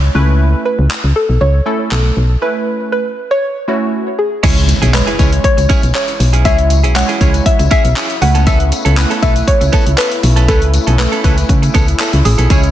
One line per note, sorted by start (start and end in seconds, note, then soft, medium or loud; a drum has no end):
0.00 0.11 C#5 loud
0.15 0.55 C#2 loud
0.15 0.96 A3 medium
0.15 0.96 C#4 medium
0.15 0.96 E4 medium
0.15 0.96 B4 medium
0.65 1.17 B4 loud
0.79 0.88 C#2 medium
0.91 clap loud
1.04 1.13 C#2 medium
1.16 1.39 A4 medium
1.29 1.39 B1 medium
1.41 1.61 C#2 medium
1.41 1.88 C#5 loud
1.66 2.09 A3 medium
1.66 2.09 C#4 medium
1.66 2.09 E4 medium
1.66 2.09 A4 medium
1.91 2.11 B1 loud
1.91 2.43 A4 medium
1.91 clap loud
2.17 2.37 B1 medium
2.42 2.98 A3 medium
2.42 2.98 C#4 medium
2.42 2.98 E4 medium
2.42 2.91 B4 loud
2.42 2.98 B4 medium
2.92 3.32 B4 medium
3.31 3.78 C#5 medium
3.68 4.10 A3 medium
3.68 4.11 C#4 medium
3.68 4.11 E4 medium
3.68 4.11 F#4 medium
4.19 4.96 G#4 medium
4.43 4.74 C#2 loud
4.43 12.46 C#3 medium
4.43 8.18 E3 medium
4.43 4.72 G#3 medium
4.43 6.43 G#3 medium
4.43 4.61 C#4 medium
4.43 4.72 C#4 medium
4.43 4.72 E4 medium
4.43 12.71 E4 loud
4.43 4.56 E4 medium
4.43 4.55 G#4 medium
4.43 4.72 C#5 medium
4.43 kick loud
4.43 closed hi-hat medium
4.43 crash loud
4.43 tambourine medium
4.43 impact medium
4.57 muted clean electric guitar stroke soft
4.57 closed hi-hat medium
4.69 muted clean electric guitar stroke soft
4.69 closed hi-hat medium
4.69 tambourine medium
4.82 5.02 B1 medium
4.82 4.92 C#4 medium
4.82 4.93 E4 medium
4.82 4.93 G#4 medium
4.82 closed hi-hat medium
4.82 tambourine soft
4.93 5.08 G#3 medium
4.93 5.09 C#4 medium
4.93 5.09 E4 medium
4.93 5.41 B4 medium
4.93 5.09 C#5 medium
4.93 clap loud
4.93 closed hi-hat medium
4.93 tambourine medium
5.07 5.18 C#4 medium
5.07 5.18 E4 medium
5.07 5.19 G#4 medium
5.07 closed hi-hat medium
5.19 5.39 C#2 loud
5.19 5.75 G#3 medium
5.19 5.33 C#4 medium
5.19 5.76 C#4 medium
5.19 5.76 E4 medium
5.19 5.32 E4 medium
5.19 5.31 G#4 medium
5.19 5.76 C#5 medium
5.19 kick medium
5.19 closed hi-hat medium
5.19 tambourine medium
5.32 muted clean electric guitar stroke soft
5.32 closed hi-hat medium
5.44 5.91 C#5 loud
5.44 kick medium
5.44 closed hi-hat loud
5.57 5.67 C#2 medium
5.57 muted clean electric guitar stroke soft
5.57 closed hi-hat medium
5.57 tambourine soft
5.69 5.87 C#4 medium
5.69 5.82 E4 loud
5.69 5.81 G#4 medium
5.69 kick medium
5.69 closed hi-hat medium
5.69 tambourine soft
5.83 5.92 B1 medium
5.83 muted clean electric guitar stroke soft
5.83 closed hi-hat medium
5.83 tambourine soft
5.94 6.12 C#4 medium
5.94 6.08 E4 medium
5.94 6.07 G#4 medium
5.94 6.47 C#5 loud
5.94 clap loud
5.94 closed hi-hat medium
5.94 tambourine medium
6.08 muted clean electric guitar stroke soft
6.08 closed hi-hat medium
6.20 6.47 B1 loud
6.20 muted clean electric guitar stroke soft
6.20 open hi-hat medium
6.20 tambourine medium
6.33 6.44 C#4 medium
6.33 6.44 E4 medium
6.33 6.45 G#4 medium
6.33 closed hi-hat medium
6.45 6.85 C#2 loud
6.45 8.20 F#3 medium
6.45 6.73 G#3 medium
6.45 6.62 C#4 medium
6.45 6.73 C#4 medium
6.45 6.74 E4 medium
6.45 6.58 E4 medium
6.45 6.57 G#4 medium
6.45 6.74 C#5 medium
6.45 6.97 E5 loud
6.45 kick loud
6.45 closed hi-hat medium
6.45 tambourine medium
6.58 muted clean electric guitar stroke soft
6.58 closed hi-hat soft
6.70 muted clean electric guitar stroke soft
6.70 closed hi-hat medium
6.70 tambourine medium
6.84 7.04 B1 medium
6.84 6.94 C#4 medium
6.84 6.95 E4 medium
6.84 6.95 G#4 medium
6.84 closed hi-hat medium
6.95 7.10 G#3 medium
6.95 7.10 C#4 medium
6.95 7.10 E4 medium
6.95 7.10 C#5 medium
6.95 7.43 F#5 loud
6.95 muted clean electric guitar stroke soft
6.95 clap loud
6.95 closed hi-hat medium
6.95 tambourine loud
7.09 7.19 C#4 medium
7.09 7.20 E4 medium
7.09 7.20 G#4 medium
7.09 closed hi-hat medium
7.20 7.41 C#2 medium
7.20 7.77 G#3 medium
7.20 7.35 C#4 medium
7.20 7.77 C#4 medium
7.20 7.77 E4 medium
7.20 7.34 E4 medium
7.20 7.33 G#4 medium
7.20 7.77 C#5 medium
7.20 kick medium
7.20 closed hi-hat medium
7.20 tambourine medium
7.34 muted clean electric guitar stroke medium
7.34 closed hi-hat medium
7.34 tambourine soft
7.46 7.57 E5 loud
7.46 kick medium
7.46 closed hi-hat loud
7.59 7.69 C#2 loud
7.59 muted clean electric guitar stroke medium
7.59 closed hi-hat medium
7.59 tambourine soft
7.71 7.88 C#4 medium
7.71 7.84 E4 medium
7.71 7.83 G#4 medium
7.71 8.18 E5 loud
7.71 kick medium
7.71 closed hi-hat medium
7.71 tambourine soft
7.84 7.94 B1 loud
7.84 muted clean electric guitar stroke soft
7.84 closed hi-hat medium
7.84 tambourine soft
7.96 8.14 C#4 medium
7.96 8.09 E4 medium
7.96 8.08 G#4 loud
7.96 clap loud
7.96 closed hi-hat medium
7.96 tambourine medium
8.09 muted clean electric guitar stroke soft
8.09 closed hi-hat medium
8.21 8.72 C#2 loud
8.21 8.83 A3 medium
8.21 12.46 A3 medium
8.21 10.21 B3 medium
8.21 8.83 C#4 medium
8.21 8.83 E4 medium
8.21 8.83 B4 medium
8.21 8.45 F#5 loud
8.21 muted clean electric guitar stroke soft
8.21 open hi-hat medium
8.21 tambourine medium
8.35 8.45 B3 medium
8.35 8.46 C#4 medium
8.35 8.46 A4 medium
8.35 closed hi-hat medium
8.35 tambourine soft
8.46 8.64 B3 medium
8.46 8.60 C#4 medium
8.46 8.59 A4 medium
8.46 9.18 E5 loud
8.46 kick loud
8.46 closed hi-hat medium
8.46 tambourine medium
8.60 muted clean electric guitar stroke medium
8.60 closed hi-hat soft
8.72 muted clean electric guitar stroke soft
8.72 closed hi-hat medium
8.72 tambourine medium
8.85 9.05 C#2 medium
8.85 8.96 B3 medium
8.85 8.96 C#4 medium
8.85 8.97 A4 medium
8.85 closed hi-hat medium
8.85 tambourine soft
8.97 9.12 A3 medium
8.97 9.12 C#4 medium
8.97 9.12 E4 medium
8.97 9.12 B4 medium
8.97 clap loud
8.97 closed hi-hat medium
8.97 tambourine medium
9.10 9.21 B3 medium
9.10 9.22 C#4 medium
9.10 9.22 A4 medium
9.10 closed hi-hat medium
9.22 9.42 B1 loud
9.22 9.79 A3 medium
9.22 9.36 B3 medium
9.22 9.79 C#4 medium
9.22 9.35 C#4 medium
9.22 9.79 E4 medium
9.22 9.34 A4 medium
9.22 9.79 B4 medium
9.22 9.46 E5 loud
9.22 kick medium
9.22 closed hi-hat medium
9.22 tambourine medium
9.36 muted clean electric guitar stroke medium
9.36 closed hi-hat medium
9.36 tambourine soft
9.47 10.00 C#5 loud
9.47 kick medium
9.47 closed hi-hat loud
9.61 9.70 C#2 loud
9.61 muted clean electric guitar stroke soft
9.61 closed hi-hat medium
9.61 tambourine soft
9.72 9.90 B3 medium
9.72 9.86 C#4 medium
9.72 9.85 A4 loud
9.72 kick medium
9.72 closed hi-hat medium
9.72 tambourine soft
9.86 9.96 C#2 loud
9.86 muted clean electric guitar stroke soft
9.86 closed hi-hat medium
9.98 10.15 B3 medium
9.98 10.11 C#4 medium
9.98 10.10 A4 loud
9.98 10.50 B4 medium
9.98 clap loud
9.98 closed hi-hat medium
9.98 tambourine medium
10.11 muted clean electric guitar stroke soft
10.11 closed hi-hat medium
10.23 10.50 B1 loud
10.23 12.48 C#4 medium
10.23 muted clean electric guitar stroke medium
10.23 open hi-hat medium
10.23 tambourine medium
10.36 10.47 B3 medium
10.36 10.48 C#4 medium
10.36 10.48 A4 medium
10.36 closed hi-hat medium
10.36 tambourine soft
10.48 10.79 C#2 loud
10.48 10.77 A3 medium
10.48 10.66 B3 medium
10.48 10.77 C#4 medium
10.48 10.61 C#4 medium
10.48 10.77 E4 medium
10.48 10.95 A4 medium
10.48 10.61 A4 loud
10.48 10.77 B4 medium
10.48 kick loud
10.48 closed hi-hat medium
10.48 tambourine medium
10.62 muted clean electric guitar stroke soft
10.62 closed hi-hat soft
10.74 muted clean electric guitar stroke soft
10.74 closed hi-hat medium
10.74 tambourine medium
10.87 11.07 B1 medium
10.87 10.98 B3 medium
10.87 10.98 C#4 medium
10.87 10.99 A4 medium
10.87 closed hi-hat medium
10.98 11.13 A3 medium
10.98 11.14 C#4 medium
10.98 11.14 E4 medium
10.98 11.14 A4 medium
10.98 11.70 B4 medium
10.98 clap loud
10.98 closed hi-hat medium
10.98 tambourine medium
11.12 11.23 B3 medium
11.12 11.23 C#4 medium
11.12 11.24 A4 medium
11.12 closed hi-hat medium
11.24 11.44 C#2 loud
11.24 11.81 A3 medium
11.24 11.38 B3 medium
11.24 11.81 C#4 medium
11.24 11.37 C#4 medium
11.24 11.81 E4 medium
11.24 11.36 A4 medium
11.24 11.81 B4 medium
11.24 kick medium
11.24 closed hi-hat medium
11.24 tambourine medium
11.37 muted clean electric guitar stroke medium
11.37 closed hi-hat medium
11.37 tambourine soft
11.49 11.69 C#3 loud
11.49 kick loud
11.49 closed hi-hat loud
11.62 muted clean electric guitar stroke medium
11.62 closed hi-hat medium
11.62 tambourine soft
11.74 11.95 C#2 medium
11.74 11.92 B3 medium
11.74 11.87 C#4 medium
11.74 11.86 A4 medium
11.74 kick medium
11.74 closed hi-hat medium
11.74 tambourine soft
11.88 muted clean electric guitar stroke soft
11.88 closed hi-hat medium
11.99 12.17 B3 medium
11.99 12.13 C#4 medium
11.99 12.12 A4 loud
11.99 clap loud
11.99 closed hi-hat medium
11.99 tambourine medium
12.13 12.23 C#2 medium
12.13 muted clean electric guitar stroke soft
12.13 closed hi-hat medium
12.25 12.36 A1 loud
12.25 12.71 G#4 medium
12.25 muted clean electric guitar stroke soft
12.25 open hi-hat medium
12.25 tambourine medium
12.38 12.48 B1 medium
12.38 12.50 B3 medium
12.38 12.49 C#4 medium
12.38 12.51 A4 medium
12.38 closed hi-hat medium
12.38 tambourine soft
12.50 12.71 C#2 loud
12.50 12.71 C#3 medium
12.50 12.71 E3 medium
12.50 12.71 G#3 medium
12.50 12.67 C#4 medium
12.50 12.71 C#4 medium
12.50 12.71 E4 medium
12.50 12.63 E4 medium
12.50 12.62 G#4 medium
12.50 12.71 C#5 medium
12.50 kick loud
12.50 closed hi-hat medium
12.50 tambourine medium
12.63 muted clean electric guitar stroke soft
12.63 closed hi-hat soft